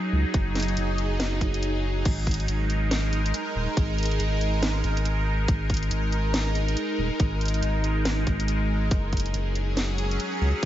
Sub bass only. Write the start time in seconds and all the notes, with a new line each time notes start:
0.12 C#2
0.34 F#1
0.77 F#1
1.41 F#1
2.06 G#1
2.48 G#1
3.55 D#1
3.77 G#1
4.20 G#1
4.84 G#1
5.48 G#1
5.91 G#1
6.98 D#1
7.20 G#1
7.62 G#1
8.27 G#1
8.91 F#1
9.34 F#1
10.41 C#2